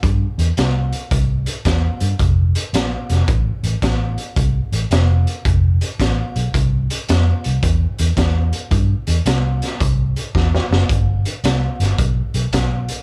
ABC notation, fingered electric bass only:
X:1
M:4/4
L:1/8
Q:"Swing" 1/4=110
K:C
V:1 name="Fingered electric bass" clef=bass
G,, E,, C,,2 C,,2 E,, G,, | F,,,2 _B,,, F,,, A,,, A,,, A,,,2 | C,, A,,, F,,,2 F,,,2 A,,, B,,, | C,,2 F,, C,, E,, E,, E,,2 |
G,, E,, C,,2 C,,2 E,, ^F,,, | G,,,2 C,, G,,, B,,, B,,, B,,,2 |]